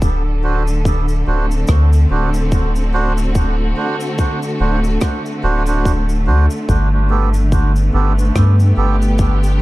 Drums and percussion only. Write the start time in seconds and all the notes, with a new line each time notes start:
0.02 kick, cabasa
0.68 cabasa
0.85 kick, cabasa
1.08 cabasa
1.51 cabasa
1.67 kick, cross-stick, cabasa
1.93 cabasa
2.34 cabasa
2.52 kick, cabasa
2.76 cabasa
3.18 cabasa
3.35 kick, cabasa
4.00 cabasa
4.18 kick, cabasa
4.43 cabasa
4.84 cabasa
5.01 kick, cross-stick, cabasa
5.26 cabasa
5.66 cabasa
5.85 kick, cabasa
6.09 cabasa
6.50 cabasa
6.69 kick, cabasa
7.34 cabasa
7.52 kick, cabasa
7.76 cabasa
8.19 cabasa
8.36 kick, cross-stick, cabasa
8.60 cabasa
9.02 cabasa
9.18 kick, cabasa
9.44 cabasa